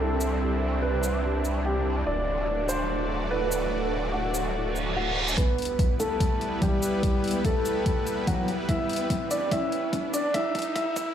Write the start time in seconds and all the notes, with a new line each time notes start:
Already playing: C2 G3 C4 D4 E4 E5
0.00 A4
0.20 shaker
0.83 B4
1.03 shaker
1.45 shaker
1.65 G4
2.07 D1 A3 F#4 D5
2.39 A4 F#5
2.69 C5, shaker
3.31 B4
3.52 shaker
4.14 F#4
4.34 shaker
4.55 reverse cymbal
4.76 shaker
4.96 F#4
5.28 shaker
5.38 G3 B3 E4 B4, kick, closed hi-hat, riser
5.58 closed hi-hat
5.62 closed hi-hat
5.65 closed hi-hat
5.79 kick, closed hi-hat
5.84 B4
6.00 A3 A4, closed hi-hat, shaker
6.09 G5
6.20 kick, closed hi-hat
6.41 closed hi-hat
6.62 G3 G4, kick, closed hi-hat
6.83 closed hi-hat, shaker
7.03 kick, closed hi-hat
7.24 closed hi-hat
7.28 closed hi-hat
7.31 closed hi-hat
7.45 A3 A4, kick, closed hi-hat
7.65 closed hi-hat, shaker
7.86 kick, closed hi-hat
8.07 closed hi-hat, shaker
8.27 F#3 F#4, kick, closed hi-hat
8.48 closed hi-hat
8.69 E4 E5, kick, closed hi-hat
8.89 closed hi-hat
8.93 closed hi-hat
8.96 closed hi-hat
9.10 kick, closed hi-hat
9.31 D4 D5, closed hi-hat, shaker
9.51 E4 E5, kick, closed hi-hat
9.72 closed hi-hat
9.93 kick, closed hi-hat
10.13 D4 D5, closed hi-hat, shaker
10.34 E4 E5, kick, closed hi-hat
10.55 kick, closed hi-hat
10.59 closed hi-hat
10.62 closed hi-hat
10.76 E4 E5, kick, closed hi-hat
10.96 kick, closed hi-hat, shaker